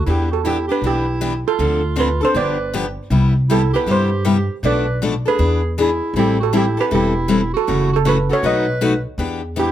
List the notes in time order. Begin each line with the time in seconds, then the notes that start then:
0.06 E2 E3 B3 D4 E4 G4
0.10 G4
0.31 F#4 A4
0.44 E3 B3 D4 E4 G4
0.67 B3 D4 G4
0.72 B4
0.81 B1 E3 B3 D4 E4 G4
0.87 G4
1.21 E3 B3 D4 G4
1.47 F4 A4
1.59 D2 D3 F3 C4 D4 A4
1.96 D3 F3 C4 D4 F4 A4
2.00 B4
2.21 C4 D4 A4 C5
2.34 G1 D3 F3 B3 D4 G4 B4 D5
2.73 D3 F3 B3 D4 G4
3.10 C2 C3 G3 B3 E4 G4
3.49 C3 G3 B3 E4 G4 A4
3.73 B3 E4 G4 B4
3.86 G2 C3 G3 B3 E4 G4
3.91 C5
4.25 C3 G3 B3 E4 G4
4.63 B1 B2 F3 A3 D4 A4 B4 D5
5.02 B2 F3 A3 D4 A4
5.25 A3 D4 G#4 A4 B4
5.38 E2 E3 B3 D4 G#4
5.78 E3 B3 D4 E4 G#4
6.14 A1 E3 G3 C4 E4 A4
6.19 G4
6.40 F#4 A4
6.53 E3 G3 C4 E4 A4
6.57 G4
6.77 C4 E4 G4 A4 B4
6.91 E1 E3 G3 C4 E4 G4 A4
7.28 E3 G3 C4 E4 A4
7.53 F#4 A4
7.67 F#1 C#3 E3 A3 C#4 F#4
7.93 F#4 A4
8.05 C#3 E3 A3 C#4 F#4 B4
8.29 A3 C#4 F#4 A4 C#5
8.43 B1 B2 F#3 A3 D#4 F#4 B4 D#5
8.81 B2 F#3 A3 D#4 F#4
9.18 E2 E3 B3 D4 G4
9.56 E3 B3 D4 E4 G4